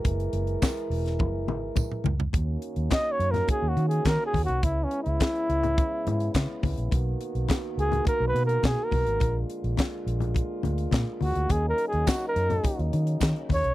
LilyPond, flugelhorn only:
\new Staff \with { instrumentName = "Flugelhorn" } { \time 4/4 \key dis \phrygian \tempo 4 = 105 r1 | r4 \tuplet 3/2 { dis''8 cis''8 ais'8 gis'8 fis'8 gis'8 ais'8 gis'8 fis'8 } | \tuplet 3/2 { e'8 cis'8 e'8~ } e'2 r4 | r4. gis'8 \tuplet 3/2 { ais'8 b'8 ais'8 gis'8 ais'4~ } |
ais'8 r2. fis'8 | \tuplet 3/2 { gis'8 ais'8 gis'8 fis'8 ais'4~ } ais'8 r4 cis''8 | }